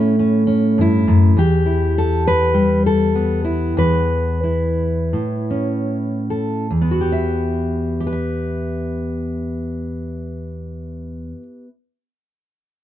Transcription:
steel-string acoustic guitar
Already playing: A2 A3 C#4 E4
0.19 C#4
0.47 C#4
0.78 G2 E4
1.08 F#2
1.37 E2 G4
1.66 E4
1.98 A4
2.27 B4
2.54 G3
2.86 A4
3.15 B3
3.45 E4
3.77 E2 B4
4.44 E4
5.13 A2
5.51 C#4
6.30 A4
6.71 E2
6.81 B3
6.91 F#4
7.01 G4
7.12 E5
8.00 G4
8.07 B4
8.13 E5

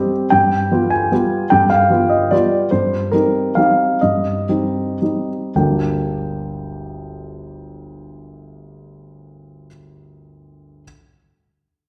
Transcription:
grand piano
Already playing: G3 C4 G4 D#5
0.30 G2 G5
0.71 G3 B3 F4
0.90 G#5
1.12 G3 B3 F4
1.50 G2 G5
1.70 F5
1.90 G3 B3 F4
2.09 D#5
2.31 G3 B3 F4 D5
2.71 G2 C5
3.11 G3 C4 D#4 A#4
3.55 G3 C4 D#4 F5
4.01 G2 D#5
4.49 G3 C4 D#4
5.02 G3 C4 D#4
5.56 G1 D2 G3 A#3 D4 G4 G5

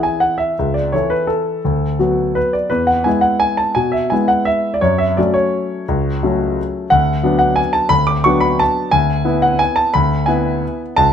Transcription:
grand piano
Already playing: E3 E4 G#4
0.03 G#5
0.20 F#5
0.38 E5
0.59 C#2
0.74 D5
0.92 E3 E4 A4 C#5
1.10 B4
1.27 A4
1.65 D2
1.99 F#3 B3 F#4
2.35 B4
2.53 D5
2.70 E2 B4
2.87 F#5
3.04 G#3 B3 E4 G#5
3.21 F#5
3.40 G#5
3.57 A5
3.75 B2 G#5
3.92 E5
4.10 G#3 B3 E4 G#5
4.28 F#5
4.45 E5
4.74 D5
4.81 F#2 C#5
4.98 E5
5.17 F#3 A3 C#4 D5
5.34 C#5
5.88 C#2
6.23 F#3 A3 C#4
6.90 D2 F#5
7.23 F#3 B3 D4
7.39 F#5
7.56 G#5
7.73 A5
7.89 D2 B5
8.07 D6
8.24 F#3 B3 D4 C#6
8.40 B5
8.59 A5
8.91 D2 G#5
9.25 B3 E4
9.42 F#5
9.59 G#5
9.76 A5
9.94 D2 B5
10.26 B3 E4 G#5
10.96 C#2 A5

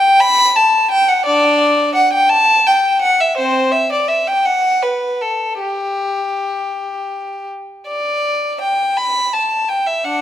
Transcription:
violin
Already playing: G5
0.20 B5
0.56 A5
0.91 G5
1.08 F#5
1.25 D4 D5
1.95 F#5
2.13 G5
2.29 A5
2.66 G5
3.01 F#5
3.20 E5
3.37 C4 C5
3.72 E5
3.92 D5
4.08 E5
4.27 G5
4.45 F#5
4.82 B4
5.21 A4
5.60 G4
7.87 D5
8.61 G5
8.97 B5
9.33 A5
9.69 G5
9.87 E5
10.04 D4 F#5

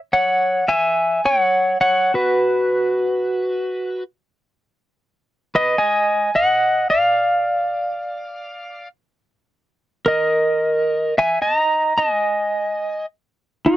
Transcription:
pedal steel guitar
0.13 C#5 F#5
0.68 E5 G#5
1.25 C#5 F#5
1.81 C#5 F#5
2.14 F#4 B4
5.55 B4 D#5
5.78 D#5 G#5
6.35 D#5 F#5
6.90 D5 F5
10.06 A#4 D#5
11.18 E5 G#5
11.42 D#5 A#5
11.98 D#5 G#5
13.66 D#4 F#4

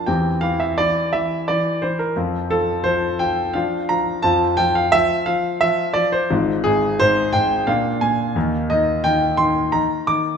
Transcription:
grand piano
Already playing: F3
0.06 E2 E3 C4 G4 G5
0.41 E3 F5
0.60 E5
0.78 E3 D5
1.13 E3 E5
1.48 E3 D5
1.82 E3 C5
1.99 A#4
2.16 F2 F3 C4 F4
2.50 F3 A4
2.84 F3 C5
3.19 F3 G5
3.54 F3 D4 F4 F5
3.89 F3 A#5
4.22 F2 F3 C4 F4 A5
4.57 F3 G5
4.75 F5
4.92 F3 E5
5.26 F3 F5
5.61 F3 E5
5.93 F3 D5
6.12 C5
6.30 G#1 G#2 C4 F4
6.64 G#2 G#4
7.00 G#2 C5
7.33 G#2 G5
7.67 A#2 A#3 D4 F5
8.01 A#2 G#5
8.35 D#2 D#3 A#3 D#4
8.70 D#3 D#5
9.04 D#3 G5
9.37 D#3 C6
9.72 D#3 A#5
10.07 D#3 D6

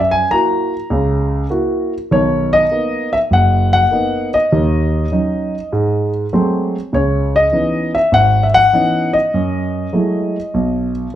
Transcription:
grand piano
Already playing: F#2
0.00 E5
0.11 G#5
0.31 A#3 E4 F#4 A#5
0.90 C#2 C#3
1.50 A#3 E4 F#4
2.11 B1 D#3 C#5
2.53 D#5
2.71 A#3 B3 D#4
3.13 E5
3.31 F#1 F#5
3.73 F#5
3.91 A#3 B3 D#4
4.34 D#5
4.52 D#2 D#3
5.12 F#3 C#4 D#4
5.73 G#2
6.33 F#3 G#3 A3 C4
6.93 C#2 C#3 C#5
7.36 D#5
7.52 E3 B3 C#4 D#4
7.95 E5
8.12 G#1 F#5
8.43 E5
8.54 F#5
8.73 E3 B3 C#4 D#4
9.13 D#5
9.34 F#2
9.93 F#3 G#3 A3 E4
10.54 B1

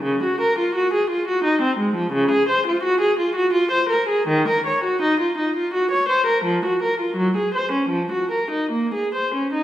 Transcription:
viola
0.03 C#3
0.23 F#4
0.41 A#4
0.59 F4
0.75 F#4
0.94 G#4
1.10 F4
1.28 F#4
1.44 D#4
1.62 C4
1.79 G#3
1.95 F3
2.13 C#3
2.31 G#4
2.49 C5
2.67 F4
2.83 F#4
3.01 G#4
3.19 F4
3.36 F#4
3.53 F4
3.71 C5
3.89 A#4
4.09 G#4
4.28 D#3
4.48 A#4
4.67 C#5
4.84 F#4
5.02 D#4
5.20 F4
5.38 D#4
5.56 F4
5.74 F#4
5.91 C#5
6.09 C5
6.27 A#4
6.45 F3
6.65 F#4
6.83 A#4
7.01 F4
7.17 F#3
7.37 G#4
7.55 C5
7.72 C#4
7.89 F3
8.12 F#4
8.31 A#4
8.51 D#4
8.71 A#3
8.94 G#4
9.15 C5
9.35 C#4
9.53 D#4

